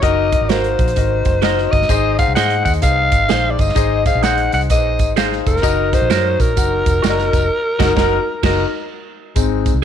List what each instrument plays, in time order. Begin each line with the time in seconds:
0.02 fingered electric bass F#1, grand piano D#4 F#4 A#4 D#5, alto saxophone D#5, kick, closed hi-hat
0.31 grand piano D#4 F#4 A#4 D#5, kick, closed hi-hat
0.41 fingered electric bass G#1
0.49 grand piano D#4 F#4 A#4 F5, clean electric guitar F#4 A#4 D#5, alto saxophone C5, snare, closed hi-hat
0.64 closed hi-hat
0.79 fingered electric bass A#1, kick, closed hi-hat
0.88 closed hi-hat
0.96 fingered electric bass G#1, grand piano D#4 F#4 A#4 D#5, kick, closed hi-hat
1.25 fingered electric bass F#1, kick, closed hi-hat
1.42 grand piano D#4 F#4 A#4 D#5, clean electric guitar F#4 A#4 D#5, snare, closed hi-hat
1.58 snare
1.71 fingered electric bass G1, alto saxophone D#5, kick, closed hi-hat
1.82 snare
1.89 fingered electric bass G#1, grand piano D#4 G#4 C5 D#5, kick, closed hi-hat, tambourine
2.18 grand piano D#4 G#4 C5 F#5, alto saxophone F5, kick, closed hi-hat, tambourine
2.28 fingered electric bass C2
2.35 fingered electric bass G#2, grand piano D#4 G#4 C5 D#5, clean electric guitar G#4 C5 D#5, alto saxophone F#5, snare, closed hi-hat, tambourine
2.50 closed hi-hat
2.65 fingered electric bass D#2, alto saxophone F#5, kick, closed hi-hat, tambourine
2.73 closed hi-hat
2.81 fingered electric bass C2, grand piano D#4 G#4 B4 D#5, alto saxophone F5, kick, closed hi-hat, tambourine
2.88 grand piano C5
3.12 fingered electric bass G#1, kick, closed hi-hat, tambourine
3.28 fingered electric bass A#1, grand piano D#4 G#4 C5 F5, clean electric guitar G#4 C5 D#5, snare, closed hi-hat, tambourine
3.50 alto saxophone D5
3.59 fingered electric bass G1, alto saxophone D#5, kick, closed hi-hat, tambourine
3.69 snare
3.75 fingered electric bass G#1, grand piano D#4 G#4 C5 D#5, kick, closed hi-hat, tambourine
4.05 grand piano D#4 G#4 C5 D#5, alto saxophone F5, kick, closed hi-hat, tambourine
4.15 fingered electric bass A#1
4.22 grand piano D#4 G#4 C5 D#5, clean electric guitar G#4 C5 D#5, alto saxophone F#5, snare, closed hi-hat, tambourine
4.38 closed hi-hat
4.52 fingered electric bass C2, alto saxophone F#5, closed hi-hat, tambourine
4.61 closed hi-hat
4.70 fingered electric bass A#1, grand piano D#4 G#4 B4 D#5, alto saxophone D#5, kick, closed hi-hat, tambourine
4.76 grand piano C5
4.99 fingered electric bass G#1, kick, closed hi-hat, tambourine
5.16 grand piano D#4 G#4 C5 F5, clean electric guitar G#4 C5 D#5, snare, closed hi-hat, tambourine
5.32 snare
5.47 fingered electric bass F1, alto saxophone A#4, kick, closed hi-hat, tambourine
5.57 snare
5.62 fingered electric bass F#1, grand piano D#4 F#4 A#4 D#5, kick, closed hi-hat, tambourine
5.92 grand piano D#4 F#4 A#4 D#5, alto saxophone C5, kick, closed hi-hat, tambourine
6.02 fingered electric bass A#1
6.09 fingered electric bass F#2, grand piano D#4 F#4 A#4 C#5, clean electric guitar F#4 A#4 D#5, snare, closed hi-hat, tambourine
6.40 fingered electric bass A#1, alto saxophone A#4, kick, closed hi-hat, tambourine
6.56 fingered electric bass F#1, grand piano D#4 F#4 A#4 F#5, kick, closed hi-hat, tambourine
6.86 fingered electric bass F1, kick, closed hi-hat, tambourine
7.02 fingered electric bass F#1, grand piano D#4 F#4 A#4 D5, clean electric guitar F#4 A#4 D#5, snare, closed hi-hat, tambourine
7.10 grand piano D#5
7.18 snare
7.33 fingered electric bass F1, kick, closed hi-hat, tambourine
7.79 fingered electric bass F#1, grand piano D#4 F#4 A#4 F#5, clean electric guitar F#4 A#4 D#5, kick, snare, crash
7.96 fingered electric bass F#1, grand piano D#4 F#4 A#4, clean electric guitar F#4 A#4 D#5, kick, snare
8.43 fingered electric bass F#1, grand piano D#4 F#4 A#4 D#5, clean electric guitar F#4 A#4 D#5, kick, snare, crash
9.35 fingered electric bass G#1, grand piano G#3 C4 D#4, kick, closed hi-hat, tambourine
9.66 kick, closed hi-hat, tambourine
9.74 fingered electric bass C2